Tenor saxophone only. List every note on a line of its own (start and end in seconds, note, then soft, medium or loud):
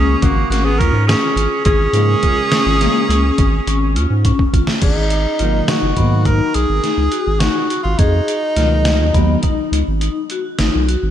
0.00 0.24 G#4 medium
0.23 0.49 F#4 medium
0.50 0.66 F#4 medium
0.65 0.80 G#4 medium
0.79 1.07 A#4 medium
1.07 1.62 G#4 medium
1.64 4.20 G#4 loud
4.84 5.70 D#4 loud
5.69 6.28 F#4 medium
6.26 6.57 A#4 loud
6.55 7.41 G#4 medium
7.40 7.83 F#4 medium
7.83 8.00 F4 medium
7.98 9.72 D#4 loud